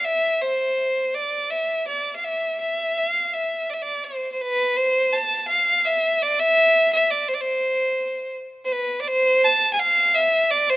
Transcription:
0, 0, Header, 1, 2, 480
1, 0, Start_track
1, 0, Tempo, 722022
1, 31, Time_signature, 3, 2, 24, 8
1, 7157, End_track
2, 0, Start_track
2, 0, Title_t, "Violin"
2, 0, Program_c, 0, 40
2, 30, Note_on_c, 0, 76, 97
2, 273, Note_on_c, 0, 72, 88
2, 283, Note_off_c, 0, 76, 0
2, 763, Note_on_c, 0, 74, 84
2, 772, Note_off_c, 0, 72, 0
2, 1001, Note_on_c, 0, 76, 89
2, 1011, Note_off_c, 0, 74, 0
2, 1242, Note_off_c, 0, 76, 0
2, 1246, Note_on_c, 0, 74, 79
2, 1425, Note_off_c, 0, 74, 0
2, 1436, Note_on_c, 0, 77, 72
2, 1490, Note_on_c, 0, 76, 92
2, 1500, Note_off_c, 0, 77, 0
2, 1728, Note_off_c, 0, 76, 0
2, 1732, Note_on_c, 0, 76, 85
2, 1973, Note_on_c, 0, 77, 87
2, 1983, Note_off_c, 0, 76, 0
2, 2216, Note_on_c, 0, 76, 76
2, 2226, Note_off_c, 0, 77, 0
2, 2458, Note_on_c, 0, 74, 70
2, 2468, Note_off_c, 0, 76, 0
2, 2483, Note_on_c, 0, 76, 64
2, 2493, Note_off_c, 0, 74, 0
2, 2540, Note_on_c, 0, 74, 81
2, 2550, Note_off_c, 0, 76, 0
2, 2687, Note_on_c, 0, 72, 67
2, 2697, Note_off_c, 0, 74, 0
2, 2870, Note_off_c, 0, 72, 0
2, 2874, Note_on_c, 0, 72, 66
2, 2936, Note_on_c, 0, 71, 109
2, 2946, Note_off_c, 0, 72, 0
2, 3171, Note_on_c, 0, 72, 110
2, 3181, Note_off_c, 0, 71, 0
2, 3406, Note_on_c, 0, 81, 103
2, 3416, Note_off_c, 0, 72, 0
2, 3641, Note_off_c, 0, 81, 0
2, 3644, Note_on_c, 0, 77, 103
2, 3888, Note_on_c, 0, 76, 100
2, 3898, Note_off_c, 0, 77, 0
2, 4137, Note_on_c, 0, 74, 108
2, 4147, Note_off_c, 0, 76, 0
2, 4248, Note_on_c, 0, 76, 127
2, 4258, Note_off_c, 0, 74, 0
2, 4605, Note_off_c, 0, 76, 0
2, 4608, Note_on_c, 0, 76, 101
2, 4725, Note_on_c, 0, 74, 91
2, 4735, Note_off_c, 0, 76, 0
2, 4841, Note_on_c, 0, 72, 84
2, 4851, Note_off_c, 0, 74, 0
2, 4880, Note_on_c, 0, 74, 68
2, 4890, Note_off_c, 0, 72, 0
2, 4923, Note_on_c, 0, 72, 98
2, 4933, Note_off_c, 0, 74, 0
2, 5554, Note_off_c, 0, 72, 0
2, 5748, Note_on_c, 0, 72, 88
2, 5801, Note_on_c, 0, 71, 98
2, 5811, Note_off_c, 0, 72, 0
2, 5990, Note_off_c, 0, 71, 0
2, 5994, Note_on_c, 0, 74, 72
2, 6036, Note_on_c, 0, 72, 116
2, 6046, Note_off_c, 0, 74, 0
2, 6279, Note_on_c, 0, 81, 113
2, 6288, Note_off_c, 0, 72, 0
2, 6467, Note_off_c, 0, 81, 0
2, 6471, Note_on_c, 0, 80, 81
2, 6509, Note_on_c, 0, 77, 115
2, 6519, Note_off_c, 0, 80, 0
2, 6748, Note_on_c, 0, 76, 110
2, 6758, Note_off_c, 0, 77, 0
2, 6987, Note_on_c, 0, 74, 114
2, 6997, Note_off_c, 0, 76, 0
2, 7113, Note_on_c, 0, 72, 109
2, 7123, Note_off_c, 0, 74, 0
2, 7157, Note_off_c, 0, 72, 0
2, 7157, End_track
0, 0, End_of_file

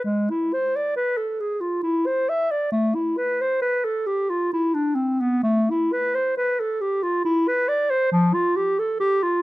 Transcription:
0, 0, Header, 1, 2, 480
1, 0, Start_track
1, 0, Tempo, 890208
1, 28, Time_signature, 3, 2, 24, 8
1, 2426, Tempo, 924499
1, 3386, Tempo, 892857
1, 5037, End_track
2, 0, Start_track
2, 0, Title_t, "Clarinet"
2, 0, Program_c, 0, 71
2, 23, Note_on_c, 0, 56, 55
2, 163, Note_on_c, 0, 64, 49
2, 171, Note_off_c, 0, 56, 0
2, 286, Note_on_c, 0, 72, 50
2, 294, Note_off_c, 0, 64, 0
2, 408, Note_on_c, 0, 74, 51
2, 417, Note_off_c, 0, 72, 0
2, 513, Note_off_c, 0, 74, 0
2, 516, Note_on_c, 0, 71, 57
2, 633, Note_on_c, 0, 69, 48
2, 641, Note_off_c, 0, 71, 0
2, 755, Note_on_c, 0, 68, 50
2, 763, Note_off_c, 0, 69, 0
2, 865, Note_on_c, 0, 65, 46
2, 873, Note_off_c, 0, 68, 0
2, 981, Note_off_c, 0, 65, 0
2, 985, Note_on_c, 0, 64, 54
2, 1113, Note_on_c, 0, 72, 53
2, 1121, Note_off_c, 0, 64, 0
2, 1236, Note_on_c, 0, 76, 53
2, 1244, Note_off_c, 0, 72, 0
2, 1352, Note_on_c, 0, 74, 50
2, 1360, Note_off_c, 0, 76, 0
2, 1462, Note_off_c, 0, 74, 0
2, 1465, Note_on_c, 0, 57, 61
2, 1590, Note_on_c, 0, 64, 51
2, 1598, Note_off_c, 0, 57, 0
2, 1711, Note_on_c, 0, 71, 53
2, 1719, Note_off_c, 0, 64, 0
2, 1838, Note_on_c, 0, 72, 53
2, 1846, Note_off_c, 0, 71, 0
2, 1947, Note_off_c, 0, 72, 0
2, 1950, Note_on_c, 0, 71, 62
2, 2072, Note_on_c, 0, 69, 54
2, 2080, Note_off_c, 0, 71, 0
2, 2192, Note_on_c, 0, 67, 56
2, 2200, Note_off_c, 0, 69, 0
2, 2316, Note_on_c, 0, 65, 52
2, 2324, Note_off_c, 0, 67, 0
2, 2432, Note_off_c, 0, 65, 0
2, 2442, Note_on_c, 0, 64, 60
2, 2551, Note_on_c, 0, 62, 57
2, 2559, Note_off_c, 0, 64, 0
2, 2661, Note_on_c, 0, 60, 57
2, 2668, Note_off_c, 0, 62, 0
2, 2791, Note_on_c, 0, 59, 55
2, 2798, Note_off_c, 0, 60, 0
2, 2907, Note_off_c, 0, 59, 0
2, 2910, Note_on_c, 0, 57, 70
2, 3051, Note_on_c, 0, 64, 59
2, 3059, Note_off_c, 0, 57, 0
2, 3165, Note_on_c, 0, 71, 61
2, 3173, Note_off_c, 0, 64, 0
2, 3281, Note_on_c, 0, 72, 55
2, 3288, Note_off_c, 0, 71, 0
2, 3392, Note_off_c, 0, 72, 0
2, 3397, Note_on_c, 0, 71, 64
2, 3521, Note_on_c, 0, 69, 57
2, 3529, Note_off_c, 0, 71, 0
2, 3634, Note_on_c, 0, 67, 55
2, 3642, Note_off_c, 0, 69, 0
2, 3751, Note_on_c, 0, 65, 56
2, 3759, Note_off_c, 0, 67, 0
2, 3866, Note_off_c, 0, 65, 0
2, 3869, Note_on_c, 0, 64, 65
2, 3991, Note_on_c, 0, 71, 66
2, 3999, Note_off_c, 0, 64, 0
2, 4103, Note_on_c, 0, 74, 61
2, 4111, Note_off_c, 0, 71, 0
2, 4221, Note_on_c, 0, 72, 63
2, 4229, Note_off_c, 0, 74, 0
2, 4333, Note_off_c, 0, 72, 0
2, 4336, Note_on_c, 0, 53, 74
2, 4456, Note_on_c, 0, 65, 64
2, 4464, Note_off_c, 0, 53, 0
2, 4577, Note_on_c, 0, 67, 62
2, 4585, Note_off_c, 0, 65, 0
2, 4698, Note_on_c, 0, 69, 56
2, 4706, Note_off_c, 0, 67, 0
2, 4806, Note_off_c, 0, 69, 0
2, 4810, Note_on_c, 0, 67, 69
2, 4935, Note_on_c, 0, 65, 60
2, 4943, Note_off_c, 0, 67, 0
2, 5037, Note_off_c, 0, 65, 0
2, 5037, End_track
0, 0, End_of_file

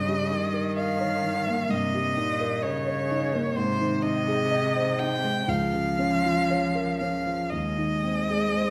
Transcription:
0, 0, Header, 1, 4, 480
1, 0, Start_track
1, 0, Key_signature, -4, "major"
1, 0, Tempo, 930233
1, 1836, Time_signature, 4, 2, 24, 8
1, 2326, Tempo, 977199
1, 2806, Tempo, 1022147
1, 4316, End_track
2, 0, Start_track
2, 0, Title_t, "Violin"
2, 0, Program_c, 0, 40
2, 0, Note_on_c, 0, 75, 59
2, 395, Note_off_c, 0, 75, 0
2, 398, Note_on_c, 0, 77, 63
2, 880, Note_on_c, 0, 75, 65
2, 888, Note_off_c, 0, 77, 0
2, 1355, Note_on_c, 0, 73, 66
2, 1363, Note_off_c, 0, 75, 0
2, 1836, Note_on_c, 0, 72, 74
2, 1843, Note_off_c, 0, 73, 0
2, 2080, Note_on_c, 0, 75, 67
2, 2087, Note_off_c, 0, 72, 0
2, 2564, Note_on_c, 0, 79, 75
2, 2571, Note_off_c, 0, 75, 0
2, 2806, Note_on_c, 0, 77, 69
2, 2813, Note_off_c, 0, 79, 0
2, 3513, Note_off_c, 0, 77, 0
2, 3516, Note_on_c, 0, 77, 52
2, 3754, Note_on_c, 0, 75, 62
2, 3761, Note_off_c, 0, 77, 0
2, 4316, Note_off_c, 0, 75, 0
2, 4316, End_track
3, 0, Start_track
3, 0, Title_t, "Grand piano"
3, 0, Program_c, 1, 0
3, 0, Note_on_c, 1, 43, 42
3, 2, Control_c, 1, 64, 127
3, 39, Note_on_c, 1, 55, 34
3, 160, Note_on_c, 1, 63, 31
3, 229, Note_off_c, 1, 55, 0
3, 275, Note_on_c, 1, 70, 36
3, 349, Note_off_c, 1, 63, 0
3, 394, Note_on_c, 1, 75, 34
3, 468, Note_off_c, 1, 70, 0
3, 514, Note_on_c, 1, 73, 38
3, 588, Note_off_c, 1, 75, 0
3, 633, Note_on_c, 1, 63, 37
3, 709, Note_off_c, 1, 73, 0
3, 757, Note_on_c, 1, 58, 40
3, 829, Note_off_c, 1, 63, 0
3, 856, Note_off_c, 1, 43, 0
3, 874, Note_on_c, 1, 43, 41
3, 950, Note_off_c, 1, 58, 0
3, 1000, Note_on_c, 1, 55, 32
3, 1118, Note_on_c, 1, 63, 41
3, 1191, Note_off_c, 1, 55, 0
3, 1239, Note_on_c, 1, 70, 43
3, 1310, Note_off_c, 1, 63, 0
3, 1358, Note_on_c, 1, 75, 42
3, 1430, Note_off_c, 1, 70, 0
3, 1477, Note_on_c, 1, 73, 37
3, 1549, Note_off_c, 1, 75, 0
3, 1603, Note_on_c, 1, 63, 42
3, 1668, Note_off_c, 1, 73, 0
3, 1716, Note_on_c, 1, 58, 41
3, 1791, Note_off_c, 1, 63, 0
3, 1813, Note_off_c, 1, 43, 0
3, 1836, Note_off_c, 1, 58, 0
3, 1840, Note_on_c, 1, 44, 47
3, 1846, Control_c, 1, 64, 0
3, 1920, Control_c, 1, 64, 127
3, 1963, Note_on_c, 1, 51, 36
3, 2082, Note_on_c, 1, 63, 41
3, 2157, Note_off_c, 1, 51, 0
3, 2206, Note_on_c, 1, 68, 41
3, 2278, Note_off_c, 1, 63, 0
3, 2328, Note_on_c, 1, 75, 46
3, 2399, Note_off_c, 1, 68, 0
3, 2445, Note_on_c, 1, 72, 39
3, 2516, Note_off_c, 1, 75, 0
3, 2564, Note_on_c, 1, 63, 38
3, 2636, Note_off_c, 1, 72, 0
3, 2685, Note_on_c, 1, 56, 38
3, 2757, Note_off_c, 1, 63, 0
3, 2788, Note_off_c, 1, 44, 0
3, 2804, Note_on_c, 1, 37, 47
3, 2807, Note_off_c, 1, 56, 0
3, 2814, Control_c, 1, 64, 0
3, 2894, Control_c, 1, 64, 127
3, 2922, Note_on_c, 1, 49, 30
3, 3041, Note_on_c, 1, 61, 40
3, 3114, Note_off_c, 1, 49, 0
3, 3165, Note_on_c, 1, 65, 39
3, 3233, Note_off_c, 1, 61, 0
3, 3284, Note_on_c, 1, 73, 39
3, 3353, Note_off_c, 1, 65, 0
3, 3400, Note_on_c, 1, 70, 34
3, 3472, Note_off_c, 1, 73, 0
3, 3522, Note_on_c, 1, 61, 36
3, 3589, Note_off_c, 1, 70, 0
3, 3638, Note_on_c, 1, 53, 32
3, 3711, Note_off_c, 1, 61, 0
3, 3737, Note_off_c, 1, 37, 0
3, 3758, Note_off_c, 1, 53, 0
3, 3760, Note_on_c, 1, 39, 37
3, 3766, Control_c, 1, 64, 0
3, 3854, Control_c, 1, 64, 127
3, 3882, Note_on_c, 1, 51, 31
3, 4004, Note_on_c, 1, 60, 32
3, 4076, Note_off_c, 1, 51, 0
3, 4126, Note_on_c, 1, 68, 35
3, 4198, Note_off_c, 1, 60, 0
3, 4248, Note_on_c, 1, 72, 33
3, 4316, Note_off_c, 1, 39, 0
3, 4316, Note_off_c, 1, 68, 0
3, 4316, Note_off_c, 1, 72, 0
3, 4316, End_track
4, 0, Start_track
4, 0, Title_t, "Cello"
4, 0, Program_c, 2, 42
4, 0, Note_on_c, 2, 49, 41
4, 169, Note_on_c, 2, 51, 51
4, 177, Note_off_c, 2, 49, 0
4, 876, Note_off_c, 2, 51, 0
4, 879, Note_on_c, 2, 48, 47
4, 1121, Note_on_c, 2, 46, 53
4, 1129, Note_off_c, 2, 48, 0
4, 1364, Note_on_c, 2, 49, 54
4, 1372, Note_off_c, 2, 46, 0
4, 1833, Note_off_c, 2, 49, 0
4, 1836, Note_on_c, 2, 48, 53
4, 2804, Note_on_c, 2, 53, 51
4, 2812, Note_off_c, 2, 48, 0
4, 3762, Note_on_c, 2, 56, 42
4, 3769, Note_off_c, 2, 53, 0
4, 4316, Note_off_c, 2, 56, 0
4, 4316, End_track
0, 0, End_of_file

